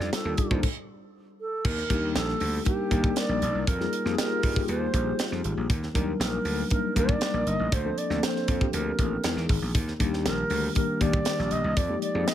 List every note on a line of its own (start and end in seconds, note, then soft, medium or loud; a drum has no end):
0.00 0.14 G3 medium
0.00 0.14 D4 medium
0.00 0.14 D#4 medium
0.00 0.14 F4 medium
0.00 0.14 A4 medium
0.00 0.13 D5 loud
0.00 snare soft
0.13 0.61 A4 medium
0.13 snare loud
0.13 closed hi-hat loud
0.25 0.34 D#2 medium
0.25 0.46 G3 medium
0.25 0.46 D4 medium
0.25 0.46 D#4 medium
0.25 0.47 F4 medium
0.25 0.47 A4 medium
0.37 kick medium
0.37 closed hi-hat medium
0.50 0.60 D#2 medium
0.50 0.63 G3 medium
0.50 0.64 D4 medium
0.50 0.64 D#4 medium
0.50 0.64 F4 medium
0.50 0.64 C5 medium
0.50 kick loud
0.63 kick loud
0.63 crash medium
1.41 1.67 A4 medium
1.65 1.82 D#2 loud
1.65 2.15 A#4 medium
1.65 kick loud
1.65 crash loud
1.78 snare soft
1.90 2.17 D#2 medium
1.90 2.52 G3 medium
1.90 2.52 A#3 medium
1.90 2.52 D4 medium
1.90 2.53 D#4 medium
1.90 2.53 G4 medium
1.90 kick loud
1.90 closed hi-hat medium
2.15 2.33 A#1 medium
2.15 2.63 A4 loud
2.15 snare loud
2.15 closed hi-hat loud
2.28 snare soft
2.40 2.58 D2 medium
2.40 open hi-hat medium
2.65 2.86 G3 medium
2.65 2.87 A#3 medium
2.65 2.87 D4 medium
2.65 2.87 D#4 medium
2.65 3.19 G4 loud
2.65 2.87 A#4 medium
2.65 kick medium
2.65 closed hi-hat medium
2.90 3.08 D#2 medium
2.90 3.63 G3 medium
2.90 3.63 A#3 medium
2.90 3.64 D4 medium
2.90 3.64 D#4 medium
2.90 3.64 A#4 medium
2.90 kick medium
2.90 closed hi-hat medium
3.04 kick loud
3.16 3.69 D5 loud
3.16 snare loud
3.16 closed hi-hat medium
3.29 3.38 A#1 medium
3.42 3.51 A#1 medium
3.42 closed hi-hat medium
3.55 3.63 C2 medium
3.67 3.85 F2 loud
3.67 4.17 A#4 loud
3.67 kick loud
3.67 closed hi-hat medium
3.79 4.00 G3 medium
3.79 4.01 A#3 medium
3.79 4.01 D#4 medium
3.79 4.01 F4 medium
3.79 4.01 G#4 medium
3.79 snare soft
3.93 closed hi-hat medium
4.05 4.14 F2 loud
4.05 4.47 A#3 medium
4.05 4.47 D#4 medium
4.05 4.47 F4 medium
4.05 4.12 G4 loud
4.05 snare soft
4.12 4.50 G#4 loud
4.18 4.65 A#4 loud
4.18 snare loud
4.18 closed hi-hat loud
4.43 4.61 G2 medium
4.43 kick loud
4.43 open hi-hat medium
4.55 5.38 G3 medium
4.55 5.39 A#3 medium
4.55 5.39 D#4 medium
4.55 5.39 F4 medium
4.55 5.39 G4 medium
4.55 kick loud
4.68 4.86 D#2 loud
4.68 5.41 C5 loud
4.68 closed hi-hat medium
4.94 5.11 A#1 medium
4.94 kick medium
4.94 closed hi-hat medium
5.19 snare loud
5.19 closed hi-hat loud
5.32 5.41 F2 loud
5.32 snare soft
5.44 5.53 G#1 medium
5.44 closed hi-hat medium
5.57 5.66 A#1 loud
5.70 5.87 D#2 loud
5.70 kick loud
5.70 closed hi-hat medium
5.83 snare soft
5.94 6.12 D#2 loud
5.94 6.00 F#3 medium
5.94 6.57 A#3 medium
5.94 6.57 D4 loud
5.94 6.57 D#4 medium
5.94 6.57 A#4 loud
5.94 kick loud
5.94 closed hi-hat medium
6.00 6.60 G3 loud
6.20 6.37 A#1 medium
6.20 6.68 A#4 loud
6.20 snare loud
6.20 closed hi-hat loud
6.45 6.62 D2 medium
6.45 open hi-hat medium
6.70 6.91 G3 medium
6.70 6.92 A#3 medium
6.70 6.92 D4 medium
6.70 6.92 D#4 medium
6.70 6.95 A#4 loud
6.70 6.92 A#4 medium
6.70 kick medium
6.70 closed hi-hat loud
6.96 7.14 D#2 medium
6.96 7.68 G3 medium
6.96 7.68 A#3 medium
6.96 7.69 D4 medium
6.96 7.69 D#4 medium
6.96 7.69 A#4 loud
6.96 7.49 D5 loud
6.96 kick medium
6.96 closed hi-hat medium
7.09 kick loud
7.21 snare loud
7.21 closed hi-hat medium
7.34 7.43 A#1 loud
7.46 7.55 G1 loud
7.46 7.75 D#5 loud
7.46 closed hi-hat medium
7.59 7.68 A1 medium
7.72 7.90 D2 medium
7.72 8.00 C5 loud
7.72 kick loud
7.72 closed hi-hat loud
7.85 8.05 F3 medium
7.85 8.05 A#3 medium
7.85 8.06 C4 medium
7.85 8.06 D4 medium
7.85 8.06 A4 medium
7.98 8.25 D5 medium
7.98 closed hi-hat medium
8.10 8.19 D2 loud
8.10 8.51 F3 medium
8.10 8.51 A#3 medium
8.10 8.52 C4 medium
8.10 8.52 D4 medium
8.10 8.52 A4 loud
8.10 snare soft
8.23 8.73 C5 loud
8.23 snare loud
8.23 closed hi-hat loud
8.36 snare soft
8.48 8.65 F2 medium
8.48 kick loud
8.48 closed hi-hat medium
8.61 9.24 F3 medium
8.61 9.24 A#3 medium
8.61 9.24 C4 medium
8.61 9.25 D4 medium
8.61 9.25 G4 medium
8.61 kick loud
8.73 8.91 D2 medium
8.73 9.45 A#4 medium
8.73 closed hi-hat medium
8.99 9.16 A1 medium
8.99 kick medium
8.99 closed hi-hat medium
9.24 9.33 E2 loud
9.24 9.65 E3 medium
9.24 9.66 G#3 medium
9.24 9.66 B3 medium
9.24 9.66 D#4 medium
9.24 9.66 G#4 medium
9.24 snare loud
9.24 closed hi-hat loud
9.37 9.45 E2 medium
9.37 snare soft
9.49 9.58 G#1 medium
9.49 kick medium
9.49 open hi-hat medium
9.62 9.71 A#1 medium
9.75 9.92 D#2 loud
9.75 kick loud
9.75 closed hi-hat loud
9.88 snare soft
9.99 10.27 D#2 medium
9.99 10.62 D#3 loud
9.99 10.62 G3 medium
9.99 10.62 A#3 medium
9.99 10.62 D4 medium
9.99 10.62 G4 loud
9.99 kick medium
9.99 closed hi-hat medium
10.13 snare soft
10.25 10.43 A#1 medium
10.25 10.72 A#4 loud
10.25 snare loud
10.25 closed hi-hat loud
10.50 10.68 D2 loud
10.50 open hi-hat medium
10.75 10.96 D#3 medium
10.75 10.97 G3 medium
10.75 10.97 A#3 medium
10.75 10.97 D4 medium
10.75 10.97 G4 medium
10.75 11.03 A#4 loud
10.75 kick medium
10.75 closed hi-hat medium
11.01 11.18 D#2 medium
11.01 11.73 D#3 medium
11.01 11.73 G3 medium
11.01 11.74 A#3 medium
11.01 11.74 D4 medium
11.01 11.74 G4 medium
11.01 11.53 D5 loud
11.01 kick medium
11.01 closed hi-hat medium
11.13 kick loud
11.25 snare loud
11.25 closed hi-hat medium
11.39 11.48 A#1 medium
11.39 snare soft
11.51 11.60 A#1 medium
11.51 11.78 D#5 loud
11.51 closed hi-hat medium
11.64 11.73 C2 loud
11.77 11.94 F2 loud
11.77 12.02 D5 loud
11.77 kick loud
11.77 closed hi-hat loud
11.89 12.10 F3 medium
11.89 12.10 G#3 medium
11.89 12.10 A#3 medium
11.89 12.10 D#4 medium
11.89 12.10 G4 loud
12.02 12.29 D5 loud
12.02 closed hi-hat medium
12.14 12.23 F2 medium
12.14 12.34 F3 medium
12.14 12.34 G#3 medium
12.14 12.34 A#3 medium
12.14 12.34 D#4 medium
12.14 12.34 G#4 loud
12.27 12.34 D#5 loud
12.27 snare loud
12.27 closed hi-hat loud